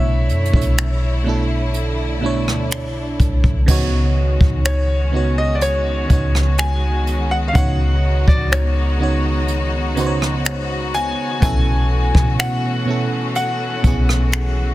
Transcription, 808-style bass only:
Already playing: B1
0.30 F#2
0.54 B1
2.48 D2
2.84 B1
3.20 B1
3.44 B1
3.68 C#2
4.41 C#2
6.10 C#2
7.55 C#2
8.28 C#2
11.42 B1
12.15 B2
13.84 B1

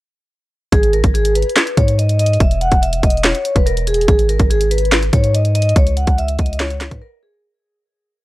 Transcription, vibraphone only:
0.72 G#4
0.93 A#4
1.14 G#4
1.35 B4
1.77 C#5
1.98 D#5
2.19 D#5
2.40 E5
2.61 F#5
2.82 E5
3.03 D#5
3.24 C#5
3.56 B4
3.66 A#4
3.87 G#4
4.08 G#4
4.29 A#4
4.50 G#4
4.71 B4
5.13 C#5
5.34 D#5
5.55 D#5
5.76 C#5
5.97 F#5
6.18 E5
6.39 D#5
6.60 C#5
6.91 B4
7.02 A#4
7.23 G#4

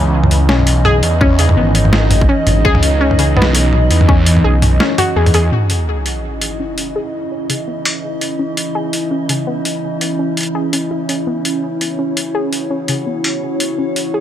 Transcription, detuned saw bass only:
Already playing: C#2
0.49 B1
1.03 E2
1.57 G#1
2.47 G#1
2.65 C#2
3.37 B1
3.90 E2
4.44 B1
5.16 E2

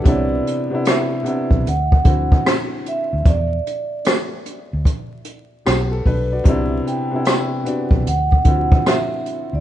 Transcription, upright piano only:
0.04 C3 B3 D4
0.09 E4
0.70 C3 B3 D4
0.75 E4
1.23 C3 B3 D4
1.28 E4
2.04 D3 C4 E4
2.09 F#4
5.66 B3 G4
5.91 A4
6.07 D4 B4
6.32 F#4 D5
6.44 C3 B3 D4
6.49 E4
7.11 C3 B3 D4
7.16 E4
7.64 C3 B3 D4
7.68 F#4
8.45 D3 C4 E4
8.49 F4
8.56 F#4

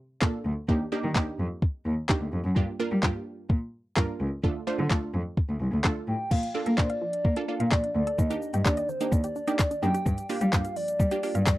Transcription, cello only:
0.22 A#2
0.45 D2
0.69 D#2
1.04 D#3
1.16 D#2
1.39 F2
1.86 D#2
2.21 D2
2.33 F2
2.44 F#2
2.56 G2
2.91 G3
3.03 G2
3.50 A#2
3.97 G2
4.20 C#2
4.44 D2
4.79 D3
4.91 D2
5.14 F2
5.49 D2
5.61 C2
5.73 D2
5.85 D2
6.08 A2
6.31 A#2
6.66 A#3
6.78 A#2
7.25 A#3
7.60 A#2
7.72 A#2
7.95 D2
8.19 D#2
8.54 G2
8.66 D#2
9.12 D#2
9.83 F#2
10.06 G2
10.41 G3
10.53 G2
11.00 G3
11.35 G2
11.47 G2

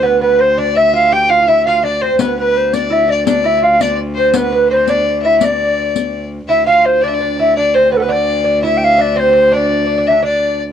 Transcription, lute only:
0.03 B3
0.21 B3
0.39 C4
0.58 D4
0.76 E4
0.93 F4
1.12 G4
1.29 F4
1.42 F4
1.48 E4
1.67 F4
1.83 D4
2.03 C4
2.20 B3
2.73 D4
2.90 E4
3.08 D4
3.26 D4
3.44 E4
3.62 F4
3.81 D4
4.17 C4
4.34 B3
4.52 B3
4.71 C4
4.89 D4
5.25 E4
5.43 D4
6.49 E4
6.67 F4
7.03 D4
7.20 D4
7.39 E4
7.57 D4
7.74 C4
7.92 B3
8.00 B3
8.08 D4
8.44 D4
8.63 E4
8.98 D4
9.16 C4
9.33 C4
9.52 D4
9.86 D4
9.98 D4
10.10 D4
10.23 D4

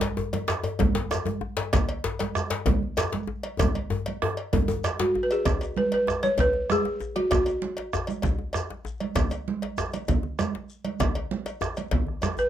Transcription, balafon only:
5.00 F#4
5.23 B4
5.32 G#4
5.78 B4
5.94 B4
6.23 C#5
6.40 B4
6.72 G#4
7.16 F#4
7.31 F#4
12.39 B4

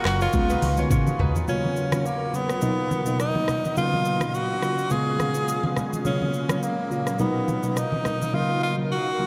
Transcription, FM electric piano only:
0.05 C#3 F#3 A#3 F4
0.34 C#3 G#3 B3 F4
0.78 C#3 G#3 B3 F4
1.48 C#3 F#3 A#3 F4
1.92 C#3 F#3 A#3 F4
2.33 C#3 F#3 A#3 F4
2.62 B2 F#3 D#4 A#4
3.06 B2 F#3 A#3 D#4
3.35 B2 F#3 A#3 D#4
3.76 C#3 F#3 A#3 F4
4.21 C#3 F#3 A#3 F4
4.62 C#3 F#3 A#3 F4
4.90 C#3 G#3 B3 F4
5.35 C#3 G#3 B3 F4
5.63 C#3 G#3 B3 F4
6.05 C#3 F#3 A#3 F4
6.49 C#3 F#3 A#3 F4
6.90 C#3 F#3 A#3 F4
7.19 B2 F#3 D#4 A#4
7.63 B2 F#3 A#3 D#4
8.33 C#3 F#3 A#3 F4
8.78 C#3 F#3 A#3 F4
9.19 C#3 F#3 A#3 F4

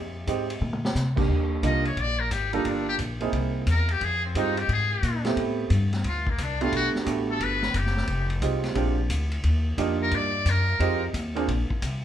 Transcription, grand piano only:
0.27 G#3 C4 D#4 G4
1.16 D#2 G3 A#3 D4 G4
1.63 G3 A#3 D4 D#4 F4
2.53 G3 A#3 D4 F4 A4
3.21 A#3 C4 D#4 E4 G#4
4.36 G#3 C4 D#4 F4 G4
5.25 A3 B3 C4 E4 G4
6.61 A3 B3 D4 F#4 G4
7.05 A3 B3 D4 F#4 G4
8.42 G#3 C4 D#4 F4 G4
8.75 G#3 C4 D4 F4 G4
9.78 A#3 D4 D#4 F4 G4
10.80 G#3 C4 D#4 F4 G4
11.35 A#3 C4 D4 F4 G#4

